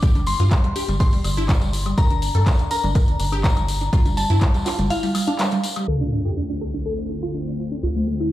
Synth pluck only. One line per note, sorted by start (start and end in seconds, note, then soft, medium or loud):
0.03 0.10 G4 loud
0.15 0.22 G3 medium
0.27 0.34 G3 medium
0.40 0.46 F4 medium
0.51 0.59 G3 medium
0.64 0.71 G3 medium
0.76 0.83 G4 medium
0.88 0.95 G3 medium
1.00 1.07 G4 medium
1.13 1.19 G3 medium
1.24 1.32 G3 medium
1.37 1.44 E4 loud
1.49 1.56 G3 medium
1.61 1.68 G3 medium
1.86 1.93 G3 medium
1.98 2.05 A#4 loud
2.10 2.17 D4 medium
2.22 2.29 D4 medium
2.35 2.41 A4 loud
2.46 2.54 D4 medium
2.59 2.66 D4 medium
2.71 2.78 A#4 medium
2.84 2.90 D4 medium
2.95 3.02 A#4 medium
3.08 3.15 D4 medium
3.20 3.27 D4 medium
3.32 3.39 G4 medium
3.44 3.51 D4 medium
3.57 3.63 D4 medium
3.81 3.88 D4 medium
3.93 4.00 F4 loud
4.06 4.12 G3 medium
4.17 4.25 G3 medium
4.30 4.37 E4 medium
4.42 4.49 G3 medium
4.54 4.61 G3 medium
4.66 4.73 F4 loud
4.79 4.85 G3 medium
4.90 4.98 E4 medium
5.03 5.10 G3 medium
5.15 5.22 G3 medium
5.28 5.34 D4 loud
5.39 5.46 G3 medium
5.52 5.59 G3 medium
5.76 5.83 G3 medium
5.88 5.95 A4 loud
6.01 6.07 D4 medium
6.13 6.20 D4 medium
6.25 6.32 G4 medium
6.37 6.44 D4 medium
6.50 6.56 D4 medium
6.61 6.68 A4 medium
6.74 6.81 D4 medium
6.86 6.93 A4 medium
6.98 7.05 D4 medium
7.10 7.17 D4 medium
7.23 7.29 F4 medium
7.34 7.42 D4 medium
7.47 7.54 D4 medium
7.71 7.78 D4 medium
7.83 7.90 F4 medium
7.96 8.02 A3 medium
8.07 8.15 A3 medium
8.20 8.27 E4 medium